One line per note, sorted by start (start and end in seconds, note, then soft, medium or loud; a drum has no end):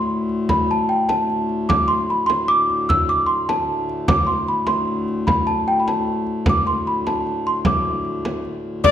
0.00 4.07 D2 medium
0.00 4.07 A2 medium
0.00 0.45 C6 medium
0.10 frame drum soft
0.29 frame drum soft
0.49 0.70 B5 medium
0.49 frame drum medium
0.68 0.91 A5 medium
0.68 frame drum soft
0.89 1.08 G5 medium
0.89 frame drum soft
1.09 1.71 A5 medium
1.09 frame drum medium
1.30 frame drum soft
1.49 frame drum soft
1.69 1.88 D6 medium
1.69 frame drum medium
1.88 2.09 C6 medium
1.88 frame drum soft
2.09 2.28 B5 medium
2.09 frame drum soft
2.26 2.46 C6 medium
2.26 frame drum medium
2.48 2.86 D6 medium
2.48 frame drum soft
2.70 frame drum soft
2.89 3.10 E6 medium
2.89 frame drum medium
3.09 3.30 D6 medium
3.27 3.48 C6 medium
3.49 4.10 A5 medium
3.49 frame drum medium
3.89 frame drum soft
4.08 8.82 D2 medium
4.08 8.82 A2 medium
4.08 4.27 D6 loud
4.08 frame drum loud
4.27 4.48 C6 medium
4.27 frame drum soft
4.48 4.67 B5 medium
4.48 frame drum soft
4.67 5.23 C6 medium
4.67 frame drum medium
4.88 frame drum soft
5.08 frame drum soft
5.27 5.46 B5 medium
5.27 frame drum medium
5.47 5.68 A5 medium
5.47 frame drum soft
5.68 5.81 G5 medium
5.68 frame drum soft
5.80 5.87 B5 medium
5.88 6.43 A5 medium
5.88 frame drum medium
6.07 frame drum soft
6.27 frame drum soft
6.46 6.58 D6 medium
6.46 frame drum medium
6.66 6.85 C6 medium
6.66 frame drum soft
6.87 6.96 B5 medium
6.87 frame drum soft
7.07 7.47 A5 medium
7.07 frame drum medium
7.27 frame drum soft
7.46 7.55 C6 medium
7.46 frame drum soft
7.65 8.41 D6 medium
7.65 frame drum medium
8.05 frame drum soft
8.25 frame drum medium
8.45 frame drum soft
8.84 8.91 D2 medium
8.84 8.91 A2 medium
8.84 8.91 D5 medium
8.84 8.91 D6 loud
8.84 frame drum medium